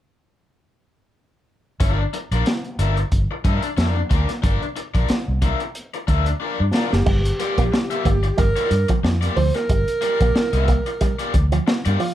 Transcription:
1.80 fingered electric bass G1, overdriven electric guitar D4 F4 A#4 D5, kick, closed hi-hat
1.99 muted overdriven electric guitar stroke
2.13 muted overdriven electric guitar stroke, closed hi-hat
2.31 fingered electric bass A#1, overdriven electric guitar D4 F4 A#4 D5, closed hi-hat
2.46 muted overdriven electric guitar stroke, snare, closed hi-hat
2.64 closed hi-hat
2.79 fingered electric bass G1, overdriven electric guitar D4 F4 A#4 E5, closed hi-hat
2.97 muted overdriven electric guitar stroke, closed hi-hat
3.12 fingered electric bass G1, kick, closed hi-hat
3.31 muted overdriven electric guitar stroke
3.45 fingered electric bass G2, overdriven electric guitar D4 F4 A#4 E5, kick, closed hi-hat
3.62 muted overdriven electric guitar stroke, closed hi-hat
3.77 fingered electric bass F2, overdriven electric guitar D4 F4 A#4 D5, snare, closed hi-hat
3.95 muted overdriven electric guitar stroke
4.10 fingered electric bass D2, overdriven electric guitar D4 F4 A#4 D5, kick, closed hi-hat
4.29 muted overdriven electric guitar stroke, snare, closed hi-hat
4.43 fingered electric bass G1, overdriven electric guitar D4 F4 A#4 D5, kick, closed hi-hat
4.62 muted overdriven electric guitar stroke, closed hi-hat
4.76 muted overdriven electric guitar stroke, closed hi-hat
4.94 fingered electric bass A#1, overdriven electric guitar D4 F4 A#4 D5, kick, closed hi-hat
5.08 muted overdriven electric guitar stroke, muted fingered electric bass stroke, snare, closed hi-hat
5.28 fingered electric bass C2
5.42 overdriven electric guitar D4 F4 A#4 E5, kick, closed hi-hat
5.60 muted overdriven electric guitar stroke, closed hi-hat
5.75 closed hi-hat
5.94 muted overdriven electric guitar stroke, closed hi-hat
6.08 fingered electric bass D2, overdriven electric guitar D4 F4 A#4 E5, kick, closed hi-hat
6.26 muted overdriven electric guitar stroke, closed hi-hat
6.40 overdriven electric guitar D4 F4 A#4 D5
6.60 fingered electric bass G2, muted overdriven electric guitar stroke
6.73 overdriven electric guitar D4 F4 A#4 D5, alto saxophone F4, snare
6.92 fingered electric bass F#1, alto saxophone G4, muted overdriven electric guitar stroke, snare
7.06 fingered electric bass G1, clean electric guitar G3, kick, crash
7.25 closed hi-hat
7.40 overdriven electric guitar A#3 F4 G4 D5, muted clean electric guitar stroke, closed hi-hat
7.58 fingered electric bass A#1, clean electric guitar A#3, kick, closed hi-hat
7.73 muted overdriven electric guitar stroke, snare
7.91 overdriven electric guitar A#3 F4 G4 E5, closed hi-hat
8.05 fingered electric bass G1, clean electric guitar A#3, muted overdriven electric guitar stroke, kick, closed hi-hat
8.23 muted overdriven electric guitar stroke, closed hi-hat
8.38 fingered electric bass G1, clean electric guitar G3, alto saxophone A#4, muted overdriven electric guitar stroke, kick, closed hi-hat
8.56 overdriven electric guitar A#3 F4 G4 D5, closed hi-hat
8.70 fingered electric bass G2, muted overdriven electric guitar stroke, muted clean electric guitar stroke, closed hi-hat
8.88 clean electric guitar F3, muted overdriven electric guitar stroke, kick, closed hi-hat
9.04 fingered electric bass F2, muted overdriven electric guitar stroke, snare
9.21 overdriven electric guitar A#3 F4 G4 D5, closed hi-hat
9.36 fingered electric bass D2, clean electric guitar F3, alto saxophone C5, muted overdriven electric guitar stroke, open hi-hat
9.54 alto saxophone A#4, muted overdriven electric guitar stroke, snare, closed hi-hat
9.69 fingered electric bass G1, clean electric guitar G3, kick, closed hi-hat
9.88 closed hi-hat
10.01 overdriven electric guitar A#3 F4 G4 D5, muted clean electric guitar stroke, closed hi-hat
10.20 fingered electric bass A#1, clean electric guitar A#3, kick, closed hi-hat
10.35 muted overdriven electric guitar stroke, snare
10.53 fingered electric bass C2, overdriven electric guitar A#3 F4 G4 E5, closed hi-hat
10.68 clean electric guitar A#3, muted overdriven electric guitar stroke, kick, closed hi-hat
10.86 muted overdriven electric guitar stroke, closed hi-hat
11.01 clean electric guitar G3, muted overdriven electric guitar stroke, kick, closed hi-hat
11.19 overdriven electric guitar A#3 F4 G4 D5, closed hi-hat
11.34 fingered electric bass D2, muted clean electric guitar stroke, muted overdriven electric guitar stroke, kick, closed hi-hat
11.52 clean electric guitar F3, muted overdriven electric guitar stroke, closed hi-hat
11.67 muted overdriven electric guitar stroke, muted clean electric guitar stroke, snare
11.85 fingered electric bass G2, overdriven electric guitar A#3 F4 G4 D5, closed hi-hat
12.00 clean electric guitar F3, alto saxophone F4, muted overdriven electric guitar stroke, open hi-hat

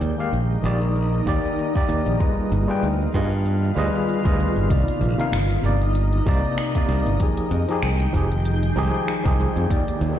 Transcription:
Already playing: tine electric piano D#3 A#3 G4 D5, ambient pad A#3 D#4
0.01 fingered electric bass D#2, shaker
0.18 tine electric piano D#3 A#3 G4 F5, shaker
0.33 fingered electric bass A#1, shaker
0.63 fingered electric bass A#1, tine electric piano D#3 A#3 G4 D5, shaker
0.82 shaker
0.96 shaker
1.13 shaker
1.25 fingered electric bass D#2, tine electric piano D#3 A#3 G4 D5, kick, shaker
1.44 shaker
1.58 shaker
1.74 tine electric piano D#3 A#3 G4 D5, kick
1.89 fingered electric bass D#2, shaker
2.06 fingered electric bass A#1, shaker
2.19 ambient pad D#3 B3 F4, tine electric piano G3 F4 G#4 B4 D#5, kick, shaker
2.52 fingered electric bass G1, shaker
2.68 tine electric piano G3 F4 G#4 B4 G5, shaker
2.83 fingered electric bass D2, shaker
3.01 shaker
3.13 fingered electric bass G2, tine electric piano G3 F4 G#4 B4 D#5, kick, shaker
3.32 shaker
3.45 shaker
3.63 shaker
3.75 fingered electric bass D2, tine electric piano G3 F4 G#4 B4 D#5, shaker
3.95 shaker
4.09 shaker
4.24 fingered electric bass D2, tine electric piano G3 F4 G#4 B4 D#5, kick
4.40 shaker
4.56 fingered electric bass G1, shaker
4.68 fingered electric bass C2, tine electric piano C3 A#3 D#4 D5, ambient pad A#3 D#4, kick, closed hi-hat, shaker
4.88 closed hi-hat
5.01 fingered electric bass A#1, shaker
5.18 tine electric piano C3 A#3 D#4 F5, closed hi-hat, shaker
5.32 fingered electric bass G1, finger snap, closed hi-hat, shaker
5.50 closed hi-hat
5.62 fingered electric bass G1, tine electric piano C3 A#3 D#4 D5, shaker
5.82 closed hi-hat, shaker
5.95 closed hi-hat, shaker
6.13 closed hi-hat, shaker
6.26 fingered electric bass C2, tine electric piano C3 A#3 D#4 D5, kick, shaker
6.44 shaker
6.58 finger snap, closed hi-hat, shaker
6.74 tine electric piano C3 A#3 D#4 D5, kick, closed hi-hat
6.89 fingered electric bass C2, shaker
7.06 fingered electric bass G1, closed hi-hat, shaker
7.20 ambient pad D#3 G#3 G5, tine electric piano F3 D#4 G4 G#4, kick, closed hi-hat, shaker
7.37 closed hi-hat
7.51 fingered electric bass F2, shaker
7.68 tine electric piano F3 D#4 G4 G#4, closed hi-hat, shaker
7.83 fingered electric bass C2, finger snap, closed hi-hat, shaker
8.00 closed hi-hat, shaker
8.13 fingered electric bass F1, tine electric piano F3 D#4 G4 G#4, kick, shaker
8.32 closed hi-hat, shaker
8.45 closed hi-hat, shaker
8.63 closed hi-hat, shaker
8.76 fingered electric bass C2, tine electric piano F3 D#4 G4 G#4, shaker
8.95 shaker
9.08 finger snap, closed hi-hat, shaker
9.24 fingered electric bass C2, tine electric piano F3 D#4 G4 G#4, kick, closed hi-hat
9.40 shaker
9.56 fingered electric bass F2, closed hi-hat, shaker
9.69 fingered electric bass D#2, tine electric piano D#3 A#3 G4 D5, ambient pad A#3 D#4, kick, closed hi-hat, riser, shaker
9.88 closed hi-hat
10.01 fingered electric bass D#2, shaker

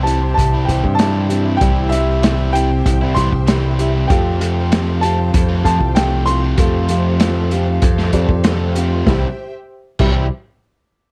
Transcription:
Already playing: picked electric bass C2, overdriven electric guitar C3, upright piano G4 E5, string section G4 C5 E5 G5
0.03 overdriven electric guitar E3, steel-string acoustic guitar G4, grand piano A5, closed hi-hat
0.08 overdriven electric guitar G3 C4 E4
0.22 muted overdriven electric guitar stroke
0.34 picked electric bass C2, grand piano A5, kick
0.39 closed hi-hat
0.54 overdriven electric guitar G3 C4 E4
0.65 picked electric bass C2, upright piano G4 C5 G5, grand piano G5, kick
0.69 overdriven electric guitar E3 G3 C4 E4, closed hi-hat
0.84 picked electric bass G2, muted overdriven electric guitar stroke, kick
0.95 grand piano A5
0.99 overdriven electric guitar C3 E3 G3 C4 E4, steel-string acoustic guitar G4, snare, closed hi-hat
1.29 overdriven electric guitar E3 G3 C4 E4, steel-string acoustic guitar G4, closed hi-hat
1.45 overdriven electric guitar G3 C4 E4
1.57 overdriven electric guitar C3, string section C5 E5, grand piano G5
1.61 picked electric bass C2, overdriven electric guitar E3 G3 C4 E4, upright piano G4 C5 D5, string section G4 G5, steel-string acoustic guitar G4, kick, closed hi-hat
1.89 overdriven electric guitar E3 G3 C4, steel-string acoustic guitar G4, grand piano E5, closed hi-hat
1.93 overdriven electric guitar E4
2.22 overdriven electric guitar C3 E3 G3 C4 E4, steel-string acoustic guitar G4, snare, closed hi-hat
2.53 overdriven electric guitar E3 G3 C4 E4, steel-string acoustic guitar G4, grand piano G5, closed hi-hat
2.71 muted overdriven electric guitar stroke
2.86 picked electric bass C2, kick, closed hi-hat
3.02 overdriven electric guitar G3 C4 E4
3.15 picked electric bass C2, overdriven electric guitar E3 G3 C4, upright piano G4 C5 E5, grand piano C6, kick, closed hi-hat
3.19 overdriven electric guitar E4
3.32 picked electric bass C2, muted overdriven electric guitar stroke, kick
3.47 overdriven electric guitar C3 E3 G3 C4 E4, steel-string acoustic guitar G4, snare, closed hi-hat
3.79 overdriven electric guitar E3 G3 C4 E4, steel-string acoustic guitar G4, closed hi-hat
3.95 overdriven electric guitar G3 C4 E4
4.08 picked electric bass F2, overdriven electric guitar F2 C3 F3, steel-string acoustic guitar G4, upright piano G4 A4 F5, string section A4 C5 F5 G5, grand piano G5, kick, closed hi-hat
4.12 overdriven electric guitar A3 C4 F4
4.40 overdriven electric guitar F3 A3 C4 F4, steel-string acoustic guitar G4, closed hi-hat
4.71 overdriven electric guitar F2 C3 F3 A3 C4 F4, steel-string acoustic guitar G4, snare, closed hi-hat
5.01 overdriven electric guitar F3 A3 C4, steel-string acoustic guitar G4, grand piano A5, closed hi-hat
5.05 overdriven electric guitar F4
5.18 muted overdriven electric guitar stroke
5.34 picked electric bass F2, kick, closed hi-hat
5.49 overdriven electric guitar F3 A3 C4 F4
5.64 picked electric bass F2, overdriven electric guitar F3 A3 C4 F4, upright piano G4 A4 F5, grand piano A5, kick, closed hi-hat
5.79 picked electric bass C2, muted overdriven electric guitar stroke, kick
5.95 overdriven electric guitar F2 C3 F3 A3 C4 F4, steel-string acoustic guitar G4, grand piano G5, snare, closed hi-hat
6.26 overdriven electric guitar F3 A3 C4 F4, steel-string acoustic guitar G4, grand piano C6, closed hi-hat
6.43 overdriven electric guitar F3 A3 C4 F4
6.58 overdriven electric guitar F2 C3 F3 A3 C4 F4, picked electric bass F2, upright piano G4 A4 F5, string section G4 A4 C5 F5, steel-string acoustic guitar G4, kick, closed hi-hat
6.89 overdriven electric guitar F3 A3 C4 F4, steel-string acoustic guitar G4, closed hi-hat
7.20 overdriven electric guitar F2 C3 F3 A3 C4 F4, steel-string acoustic guitar G4, snare, closed hi-hat
7.51 overdriven electric guitar F3 A3 C4 F4, steel-string acoustic guitar G4, closed hi-hat
7.69 muted overdriven electric guitar stroke
7.82 picked electric bass F2, kick, closed hi-hat
7.98 overdriven electric guitar F3 A3 C4 F4, snare
8.13 picked electric bass F2, overdriven electric guitar F3 A3 C4 F4, upright piano G4 A4 D5, kick, closed hi-hat
8.28 picked electric bass F2, muted overdriven electric guitar stroke, kick
8.44 overdriven electric guitar F2 C3 F3 A3 C4 F4, steel-string acoustic guitar G4, snare, closed hi-hat
8.75 overdriven electric guitar F3 A3, steel-string acoustic guitar G4, closed hi-hat
8.79 overdriven electric guitar C4 F4
8.93 overdriven electric guitar F3 A3 C4 F4
9.06 picked electric bass C2, overdriven electric guitar C3 E3 G3 C4 E4, upright piano G4 C5 E5, string section G4 C5 E5 G5, steel-string acoustic guitar G4, kick, snare
9.99 picked electric bass C2, overdriven electric guitar C3 E3 G3 C4 E4, upright piano G4 C5 E5, steel-string acoustic guitar G4, kick, crash

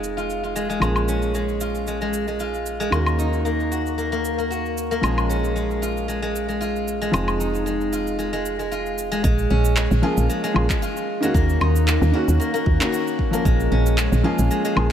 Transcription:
Already playing: fm bass F1, felt piano F3 C4 D#4 G#4, guzheng G#3 D#4 F4
0.04 cabasa
0.17 guzheng F4, cabasa
0.30 cabasa
0.43 guzheng F4, cabasa
0.56 guzheng G#3, cabasa
0.70 guzheng G#3, cabasa
0.80 fm bass A#1, felt piano F3 A#3 C#4 G#4, guzheng G#3, cabasa, low woodblock
0.96 cabasa, low woodblock
1.08 guzheng C#4, cabasa
1.22 cabasa
1.34 guzheng G#3, cabasa
1.49 cabasa
1.61 guzheng F4, cabasa
1.75 cabasa
1.87 guzheng G#3, cabasa
2.01 guzheng G#3, cabasa
2.14 cabasa
2.28 guzheng G#3, cabasa
2.40 guzheng F4, cabasa
2.54 cabasa
2.66 cabasa
2.80 guzheng G#3, cabasa
2.90 fm bass D#2, felt piano D#3 A#3 C#4 F#4, guzheng A#3, cabasa, low woodblock
3.06 cabasa, low woodblock
3.19 guzheng D#4, cabasa
3.33 cabasa
3.45 guzheng A#3, cabasa
3.60 cabasa
3.72 guzheng F#4, cabasa
3.86 cabasa
3.98 guzheng A#3, cabasa
4.12 guzheng A#3, cabasa
4.25 cabasa
4.38 guzheng A#3, cabasa
4.50 guzheng F#4, cabasa
4.66 cabasa
4.78 cabasa
4.91 guzheng A#3, cabasa
5.01 fm bass A#1, felt piano F3 A#3 C#4, guzheng G#3, cabasa, low woodblock
5.05 felt piano G#4
5.18 cabasa, low woodblock
5.29 guzheng C#4, cabasa
5.45 cabasa
5.56 guzheng G#3, cabasa
5.71 cabasa
5.82 guzheng F4, cabasa
5.97 cabasa
6.08 guzheng G#3, cabasa
6.22 guzheng G#3, cabasa
6.36 cabasa
6.48 guzheng G#3, cabasa
6.61 guzheng F4, cabasa
6.76 cabasa
6.88 cabasa
7.02 guzheng G#3, cabasa
7.11 fm bass F1, felt piano F3 C4 D#4, guzheng G#3, cabasa, low woodblock
7.15 felt piano G#4
7.28 cabasa, low woodblock
7.40 guzheng D#4, cabasa
7.55 cabasa
7.66 guzheng G#3, cabasa
7.81 cabasa
7.92 guzheng F4, cabasa
8.07 cabasa
8.19 guzheng G#3, cabasa
8.33 guzheng G#3, cabasa
8.46 cabasa
8.59 guzheng G#3, cabasa
8.71 guzheng F4, cabasa
8.86 cabasa
8.98 cabasa
9.12 guzheng G#3, cabasa
9.24 fm bass A#1, guzheng G#3, kick, cabasa
9.39 cabasa
9.50 fm bass A#1, guzheng C#4
9.65 cabasa
9.76 guzheng G#3, clap, cabasa
9.91 fm bass A#1, cabasa
10.02 felt piano F3 A#3 C#4 G#4, guzheng F4
10.17 fm bass A#1, cabasa
10.29 guzheng G#3, cabasa
10.44 guzheng G#3, cabasa
10.54 fm bass A#1, felt piano F3 A#3 C#4 G#4, low woodblock
10.70 guzheng G#3, kick, clap, cabasa
10.82 guzheng F4, cabasa
10.97 cabasa
11.20 felt piano D#3 A#3 C#4 F#4, guzheng G#3, cabasa
11.34 fm bass D#2, guzheng A#3, kick, cabasa
11.50 cabasa
11.61 fm bass D#2, guzheng D#4, low woodblock
11.76 cabasa
11.87 guzheng A#3, clap, cabasa
12.02 fm bass D#2, cabasa
12.12 felt piano D#3 A#3 C#4 F#4, guzheng F#4
12.28 fm bass D#2, cabasa
12.40 guzheng A#3, cabasa
12.54 guzheng A#3, cabasa
12.66 fm bass D#2, kick
12.79 felt piano D#3 A#3 C#4 F#4, guzheng A#3, clap, cabasa
12.92 guzheng F#4, cabasa
13.07 cabasa
13.19 kick
13.31 felt piano F3 A#3 C#4, guzheng A#3, cabasa
13.35 felt piano A#4
13.45 fm bass A#1, guzheng G#3, kick, cabasa
13.60 cabasa
13.72 fm bass A#1, guzheng C#4
13.86 cabasa
13.98 guzheng G#3, clap, cabasa
14.12 fm bass A#1, cabasa
14.23 felt piano F3 A#3 C#4 G#4, guzheng F4
14.39 fm bass A#1, cabasa
14.51 guzheng G#3, cabasa
14.65 guzheng G#3, cabasa
14.76 fm bass A#1, felt piano F3 A#3 C#4 G#4, low woodblock

